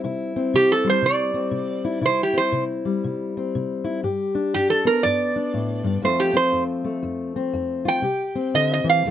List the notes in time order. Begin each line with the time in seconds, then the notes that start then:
Already playing: G3 C4
0.04 C3 E4
0.36 C4
0.54 C3 G4
0.72 A4
0.84 G3
0.89 C5
1.02 C3 D5
1.34 C4
1.51 C3
1.85 E4
2.01 C3 E4
2.06 C5
2.23 G4
2.33 C4
2.37 C5
2.52 C3
2.85 G3
3.04 C3
3.37 C4
3.55 C3
3.84 E4
4.03 G2 G4
4.35 D4
4.54 G2 G4
4.70 A4
4.85 B3 A#4
5.03 G2 D5
5.36 D4
5.54 A2
5.84 G2
6.02 F2 F3 A3 C4 F4 C5
6.20 G4
6.33 C4 C5
6.52 F2
6.84 A3
7.03 F2
7.36 C4
7.53 F2
7.85 F4 G5
8.02 C3 G4
8.35 C4
8.54 D3 D#5
8.73 D#5
8.84 E3
8.89 F5
9.05 F2 F3 A3